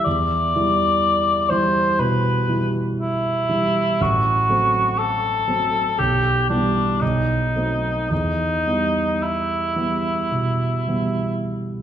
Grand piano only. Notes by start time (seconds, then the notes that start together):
0.06 E2
0.56 E3 G3 E4
1.50 E3 G3 E4
1.99 B2
2.49 E3 G3 E4
3.49 E3 G3 E4
4.01 A1
4.49 F#3 A3 C4
5.48 F#3 A3 C4
6.00 B1
6.50 E3 G3 B3
7.02 B1
7.56 F#3 A3 C4
8.11 E2
8.67 E3 G3 B3
9.76 E3 G3 B3
10.31 B2
10.87 E3 G3 B3